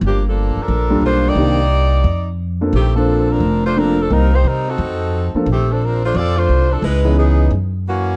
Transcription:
0.01 G1
0.06 F3 A#3 D4 G4
0.28 F3 A#3 D4 A4
0.57 muted upright bass stroke
0.61 F3 D4 A4 A#4
0.68 A#1
0.90 G3 A#3 D4 F4 A4
1.01 B1 A3 F4
1.06 D4 C5
1.28 A#3 D#4 G4 D5
1.35 C2 D#3 A#3 C4 D4 G4
2.04 F2
2.61 F3 A#3 C4 D4 A4
2.73 A#1 D#3 A3 C4 G4
2.95 F3 A#3 C4 D4 A4
3.30 F3 C4 D4 A#4
3.40 F1
3.65 A3 D4 F4 C5
3.76 F3 A#3 C4 D4 A4 A#4
4.00 F3 C4 D4 A4
4.10 C2 G3 A#3 C4 D#4 A#4
4.33 A#3 D#4 G4 C5
4.44 C3 G3 C4 D#4 A#4
4.69 C4 D#4 F#4 A4
4.78 F2
5.34 F3 A#3 C4 D4 A4, muted upright bass stroke
5.46 A#1
5.52 D#3 A3 C4 G4
5.71 F3 C4 D4 A4
5.85 F3 C4 D4 A#4
6.05 A3 D4 F4 C5
6.14 F2 C4 F4 A4 D5
6.37 A3 D4 F4 C5
6.49 C2
6.71 F3 C4 D4 A4
6.82 C#2 G#3 D#4 E4 B4
7.04 E3 B3 C#4 D#4 G#4
7.18 E3 B3 D#4 G#4
7.51 F#2
7.88 E3 A#3 C#4 F#4

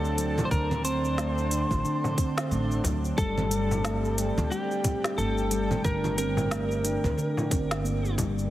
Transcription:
Already playing: D2 D3 C4 D4 A4 D5 A5
0.05 shaker
0.18 F#3, closed hi-hat, shaker
0.38 low conga, frame drum, shaker
0.45 C5
0.51 D2 D3 A#4, kick, shaker
0.71 low conga, shaker
0.85 C4 C5, closed hi-hat, shaker
1.05 shaker
1.18 A3, snare, shaker
1.38 shaker
1.51 D4, closed hi-hat, shaker
1.71 A1, kick, low conga, shaker
1.85 D3, shaker
2.04 frame drum, shaker
2.18 C4, kick, closed hi-hat, shaker
2.38 snare, shaker
2.51 A1 A3, shaker
2.71 shaker
2.84 D2 F#3, kick, closed hi-hat, frame drum, shaker
3.05 shaker
3.17 G1 G3 A4, kick, shaker
3.38 low conga, shaker
3.51 G3, closed hi-hat, shaker
3.71 frame drum, shaker
3.84 A3, snare, shaker
4.03 G5, shaker
4.18 G3, closed hi-hat, shaker
4.38 D2, low conga, shaker
4.51 G3 G4, shaker
4.71 shaker
4.84 C4, kick, closed hi-hat, frame drum, shaker
5.04 snare, shaker
5.18 G1 A3 A4, shaker
5.38 shaker
5.51 G3, closed hi-hat, shaker
5.71 low conga, frame drum, shaker
5.85 G1 D3 A#4, kick, shaker
6.04 low conga, shaker
6.18 C4 A#4, closed hi-hat, shaker
6.37 frame drum, shaker
6.51 A3, snare, shaker
6.71 shaker
6.84 D4, closed hi-hat, shaker
7.04 D2, kick, low conga, shaker
7.17 D3, shaker
7.37 frame drum, shaker
7.51 G1 C4, kick, closed hi-hat, shaker
7.71 snare, shaker
7.84 A#3, shaker
8.05 shaker
8.18 G3, kick, closed hi-hat, frame drum, shaker
8.39 shaker

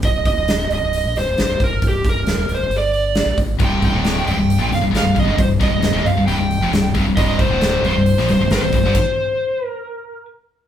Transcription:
0.02 C1 D#5, kick, open hi-hat
0.25 D#5, kick, open hi-hat
0.36 D1
0.48 snare, open hi-hat
0.70 C1 D#5, open hi-hat
0.83 C1
0.93 open hi-hat
1.05 A#1
1.16 C1 C5, snare, open hi-hat
1.29 C1
1.38 G#1 C5, snare, open hi-hat
1.49 C1
1.60 C1 A#4, kick, open hi-hat
1.72 G1
1.82 C1, kick, open hi-hat
1.88 G4
2.04 C1, kick, open hi-hat
2.10 A#4
2.14 C1
2.27 C1, snare, open hi-hat
2.37 D#1
2.49 C1, open hi-hat
2.54 C5
2.61 C1
2.70 G1, open hi-hat
2.78 D5
2.93 open hi-hat
3.15 snare, open hi-hat
3.26 A#1
3.37 G#1, kick, open hi-hat
3.59 C1 C2 G2 C3, kick, open hi-hat
3.64 G5
3.82 G5, kick, open hi-hat
3.92 D1 D2 A2 D3
4.04 snare, open hi-hat
4.25 C1 C2 G2 G5, open hi-hat
4.37 C1 C2 G2
4.50 open hi-hat
4.58 A#1 A#2 F3
4.70 C1 C2 G2, snare, open hi-hat
4.75 F5
4.81 C1 C2 G2
4.91 G#1 G#2 D#3, open hi-hat
4.95 G#2 F5, snare
5.03 C1 C2 G2
5.15 C1 C2 G2, kick, open hi-hat
5.19 D#5
5.24 G1 G2 D3
5.37 C1 C2 G2 C5, kick, open hi-hat
5.60 C1 C2 G2 D#5, kick, open hi-hat
5.70 C1 C2 G2
5.81 C1 C2 G2, snare, open hi-hat
5.92 D#1 D#2 A#2
6.04 C1 C2 G2 F5, open hi-hat
6.15 C1 C2 G2
6.27 C1 C2 G2 G5, open hi-hat
6.39 C1 C2 G2
6.51 open hi-hat
6.60 F1 F2 C3
6.71 C1 C2 G2, snare, open hi-hat
6.94 C1 C2 G2, kick, open hi-hat
7.04 C1 C2
7.08 G2
7.17 C1 C2 G2 C3 D#5, kick, open hi-hat
7.39 C5, kick, open hi-hat
7.50 D1 D2 A2 D3
7.61 snare, open hi-hat
7.82 C1 C2 G2, open hi-hat
7.86 C5
7.95 C1 C2 G2
8.06 open hi-hat
8.19 A#1 A#2 F3, snare
8.28 C1 C2 G2 C5, snare, open hi-hat
8.40 C1 C2 G2
8.50 G#1 G#2 D#3 C5, snare, open hi-hat
8.63 C1 C2 G2
8.72 C1 C2 G2, kick, open hi-hat
8.85 G1 G2 D3
8.95 kick, crash
9.66 A#4

